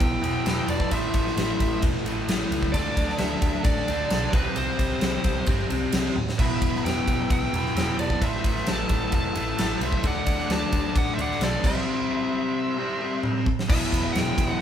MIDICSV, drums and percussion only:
0, 0, Header, 1, 2, 480
1, 0, Start_track
1, 0, Key_signature, 1, "minor"
1, 0, Tempo, 456274
1, 956, Time_signature, 4, 2, 24, 8
1, 15373, End_track
2, 0, Start_track
2, 0, Title_t, "Drums"
2, 5, Note_on_c, 9, 36, 107
2, 12, Note_on_c, 9, 51, 86
2, 110, Note_off_c, 9, 36, 0
2, 118, Note_off_c, 9, 51, 0
2, 249, Note_on_c, 9, 51, 67
2, 354, Note_off_c, 9, 51, 0
2, 483, Note_on_c, 9, 51, 105
2, 492, Note_on_c, 9, 38, 118
2, 588, Note_off_c, 9, 51, 0
2, 597, Note_off_c, 9, 38, 0
2, 719, Note_on_c, 9, 51, 80
2, 824, Note_off_c, 9, 51, 0
2, 840, Note_on_c, 9, 36, 88
2, 946, Note_off_c, 9, 36, 0
2, 960, Note_on_c, 9, 51, 108
2, 962, Note_on_c, 9, 36, 94
2, 1065, Note_off_c, 9, 51, 0
2, 1068, Note_off_c, 9, 36, 0
2, 1196, Note_on_c, 9, 51, 78
2, 1202, Note_on_c, 9, 36, 89
2, 1301, Note_off_c, 9, 51, 0
2, 1307, Note_off_c, 9, 36, 0
2, 1336, Note_on_c, 9, 38, 30
2, 1441, Note_off_c, 9, 38, 0
2, 1446, Note_on_c, 9, 51, 109
2, 1455, Note_on_c, 9, 38, 107
2, 1551, Note_off_c, 9, 51, 0
2, 1560, Note_off_c, 9, 38, 0
2, 1686, Note_on_c, 9, 36, 83
2, 1686, Note_on_c, 9, 51, 80
2, 1791, Note_off_c, 9, 36, 0
2, 1791, Note_off_c, 9, 51, 0
2, 1917, Note_on_c, 9, 51, 99
2, 1925, Note_on_c, 9, 36, 109
2, 2022, Note_off_c, 9, 51, 0
2, 2030, Note_off_c, 9, 36, 0
2, 2166, Note_on_c, 9, 51, 67
2, 2271, Note_off_c, 9, 51, 0
2, 2404, Note_on_c, 9, 51, 113
2, 2414, Note_on_c, 9, 38, 116
2, 2510, Note_off_c, 9, 51, 0
2, 2519, Note_off_c, 9, 38, 0
2, 2650, Note_on_c, 9, 51, 73
2, 2756, Note_off_c, 9, 51, 0
2, 2762, Note_on_c, 9, 36, 86
2, 2868, Note_off_c, 9, 36, 0
2, 2883, Note_on_c, 9, 36, 94
2, 2883, Note_on_c, 9, 51, 108
2, 2988, Note_off_c, 9, 36, 0
2, 2988, Note_off_c, 9, 51, 0
2, 3124, Note_on_c, 9, 36, 84
2, 3125, Note_on_c, 9, 51, 77
2, 3229, Note_off_c, 9, 36, 0
2, 3230, Note_off_c, 9, 51, 0
2, 3252, Note_on_c, 9, 38, 34
2, 3350, Note_on_c, 9, 51, 93
2, 3358, Note_off_c, 9, 38, 0
2, 3359, Note_on_c, 9, 38, 106
2, 3455, Note_off_c, 9, 51, 0
2, 3464, Note_off_c, 9, 38, 0
2, 3596, Note_on_c, 9, 51, 77
2, 3599, Note_on_c, 9, 36, 96
2, 3701, Note_off_c, 9, 51, 0
2, 3704, Note_off_c, 9, 36, 0
2, 3833, Note_on_c, 9, 51, 100
2, 3837, Note_on_c, 9, 36, 114
2, 3938, Note_off_c, 9, 51, 0
2, 3942, Note_off_c, 9, 36, 0
2, 4082, Note_on_c, 9, 51, 64
2, 4187, Note_off_c, 9, 51, 0
2, 4317, Note_on_c, 9, 51, 103
2, 4326, Note_on_c, 9, 38, 115
2, 4422, Note_off_c, 9, 51, 0
2, 4431, Note_off_c, 9, 38, 0
2, 4558, Note_on_c, 9, 36, 115
2, 4558, Note_on_c, 9, 51, 71
2, 4663, Note_off_c, 9, 36, 0
2, 4663, Note_off_c, 9, 51, 0
2, 4794, Note_on_c, 9, 51, 102
2, 4900, Note_off_c, 9, 51, 0
2, 5040, Note_on_c, 9, 36, 85
2, 5042, Note_on_c, 9, 51, 79
2, 5145, Note_off_c, 9, 36, 0
2, 5148, Note_off_c, 9, 51, 0
2, 5273, Note_on_c, 9, 51, 99
2, 5282, Note_on_c, 9, 38, 114
2, 5378, Note_off_c, 9, 51, 0
2, 5387, Note_off_c, 9, 38, 0
2, 5513, Note_on_c, 9, 51, 90
2, 5518, Note_on_c, 9, 36, 91
2, 5618, Note_off_c, 9, 51, 0
2, 5623, Note_off_c, 9, 36, 0
2, 5748, Note_on_c, 9, 51, 98
2, 5759, Note_on_c, 9, 36, 109
2, 5853, Note_off_c, 9, 51, 0
2, 5864, Note_off_c, 9, 36, 0
2, 5999, Note_on_c, 9, 51, 74
2, 6105, Note_off_c, 9, 51, 0
2, 6233, Note_on_c, 9, 51, 122
2, 6242, Note_on_c, 9, 38, 114
2, 6338, Note_off_c, 9, 51, 0
2, 6347, Note_off_c, 9, 38, 0
2, 6478, Note_on_c, 9, 48, 64
2, 6584, Note_off_c, 9, 48, 0
2, 6613, Note_on_c, 9, 38, 87
2, 6718, Note_off_c, 9, 38, 0
2, 6723, Note_on_c, 9, 36, 122
2, 6726, Note_on_c, 9, 49, 99
2, 6828, Note_off_c, 9, 36, 0
2, 6831, Note_off_c, 9, 49, 0
2, 6962, Note_on_c, 9, 36, 92
2, 6962, Note_on_c, 9, 51, 79
2, 7067, Note_off_c, 9, 36, 0
2, 7067, Note_off_c, 9, 51, 0
2, 7103, Note_on_c, 9, 38, 34
2, 7208, Note_off_c, 9, 38, 0
2, 7218, Note_on_c, 9, 51, 90
2, 7227, Note_on_c, 9, 38, 101
2, 7323, Note_off_c, 9, 51, 0
2, 7332, Note_off_c, 9, 38, 0
2, 7444, Note_on_c, 9, 36, 93
2, 7447, Note_on_c, 9, 51, 76
2, 7549, Note_off_c, 9, 36, 0
2, 7552, Note_off_c, 9, 51, 0
2, 7683, Note_on_c, 9, 36, 111
2, 7684, Note_on_c, 9, 51, 91
2, 7789, Note_off_c, 9, 36, 0
2, 7789, Note_off_c, 9, 51, 0
2, 7930, Note_on_c, 9, 51, 64
2, 8035, Note_off_c, 9, 51, 0
2, 8057, Note_on_c, 9, 38, 32
2, 8163, Note_off_c, 9, 38, 0
2, 8169, Note_on_c, 9, 51, 111
2, 8179, Note_on_c, 9, 38, 119
2, 8275, Note_off_c, 9, 51, 0
2, 8284, Note_off_c, 9, 38, 0
2, 8405, Note_on_c, 9, 51, 72
2, 8510, Note_off_c, 9, 51, 0
2, 8522, Note_on_c, 9, 36, 91
2, 8628, Note_off_c, 9, 36, 0
2, 8644, Note_on_c, 9, 36, 103
2, 8645, Note_on_c, 9, 51, 100
2, 8749, Note_off_c, 9, 36, 0
2, 8751, Note_off_c, 9, 51, 0
2, 8883, Note_on_c, 9, 36, 91
2, 8883, Note_on_c, 9, 51, 83
2, 8988, Note_off_c, 9, 36, 0
2, 8988, Note_off_c, 9, 51, 0
2, 9010, Note_on_c, 9, 38, 34
2, 9115, Note_on_c, 9, 51, 101
2, 9116, Note_off_c, 9, 38, 0
2, 9125, Note_on_c, 9, 38, 105
2, 9221, Note_off_c, 9, 51, 0
2, 9230, Note_off_c, 9, 38, 0
2, 9354, Note_on_c, 9, 51, 79
2, 9362, Note_on_c, 9, 36, 93
2, 9459, Note_off_c, 9, 51, 0
2, 9467, Note_off_c, 9, 36, 0
2, 9594, Note_on_c, 9, 51, 90
2, 9601, Note_on_c, 9, 36, 97
2, 9699, Note_off_c, 9, 51, 0
2, 9707, Note_off_c, 9, 36, 0
2, 9841, Note_on_c, 9, 51, 75
2, 9946, Note_off_c, 9, 51, 0
2, 10083, Note_on_c, 9, 51, 116
2, 10093, Note_on_c, 9, 38, 121
2, 10189, Note_off_c, 9, 51, 0
2, 10198, Note_off_c, 9, 38, 0
2, 10323, Note_on_c, 9, 51, 83
2, 10428, Note_off_c, 9, 51, 0
2, 10441, Note_on_c, 9, 36, 91
2, 10546, Note_off_c, 9, 36, 0
2, 10557, Note_on_c, 9, 51, 96
2, 10561, Note_on_c, 9, 36, 102
2, 10662, Note_off_c, 9, 51, 0
2, 10666, Note_off_c, 9, 36, 0
2, 10799, Note_on_c, 9, 51, 78
2, 10803, Note_on_c, 9, 36, 93
2, 10904, Note_off_c, 9, 51, 0
2, 10908, Note_off_c, 9, 36, 0
2, 10933, Note_on_c, 9, 38, 37
2, 11038, Note_off_c, 9, 38, 0
2, 11045, Note_on_c, 9, 51, 98
2, 11054, Note_on_c, 9, 38, 116
2, 11150, Note_off_c, 9, 51, 0
2, 11160, Note_off_c, 9, 38, 0
2, 11283, Note_on_c, 9, 51, 84
2, 11284, Note_on_c, 9, 36, 85
2, 11388, Note_off_c, 9, 51, 0
2, 11389, Note_off_c, 9, 36, 0
2, 11525, Note_on_c, 9, 36, 109
2, 11528, Note_on_c, 9, 51, 99
2, 11630, Note_off_c, 9, 36, 0
2, 11634, Note_off_c, 9, 51, 0
2, 11770, Note_on_c, 9, 51, 66
2, 11875, Note_off_c, 9, 51, 0
2, 11902, Note_on_c, 9, 38, 34
2, 12003, Note_on_c, 9, 51, 100
2, 12007, Note_off_c, 9, 38, 0
2, 12012, Note_on_c, 9, 38, 127
2, 12108, Note_off_c, 9, 51, 0
2, 12117, Note_off_c, 9, 38, 0
2, 12245, Note_on_c, 9, 36, 111
2, 12250, Note_on_c, 9, 49, 91
2, 12351, Note_off_c, 9, 36, 0
2, 12355, Note_off_c, 9, 49, 0
2, 13922, Note_on_c, 9, 48, 67
2, 14027, Note_off_c, 9, 48, 0
2, 14164, Note_on_c, 9, 36, 93
2, 14269, Note_off_c, 9, 36, 0
2, 14299, Note_on_c, 9, 38, 90
2, 14405, Note_off_c, 9, 38, 0
2, 14408, Note_on_c, 9, 36, 126
2, 14411, Note_on_c, 9, 57, 127
2, 14513, Note_off_c, 9, 36, 0
2, 14516, Note_off_c, 9, 57, 0
2, 14650, Note_on_c, 9, 36, 84
2, 14662, Note_on_c, 9, 51, 82
2, 14755, Note_off_c, 9, 36, 0
2, 14767, Note_off_c, 9, 51, 0
2, 14890, Note_on_c, 9, 51, 96
2, 14899, Note_on_c, 9, 38, 102
2, 14995, Note_off_c, 9, 51, 0
2, 15005, Note_off_c, 9, 38, 0
2, 15126, Note_on_c, 9, 36, 91
2, 15130, Note_on_c, 9, 51, 87
2, 15232, Note_off_c, 9, 36, 0
2, 15235, Note_off_c, 9, 51, 0
2, 15373, End_track
0, 0, End_of_file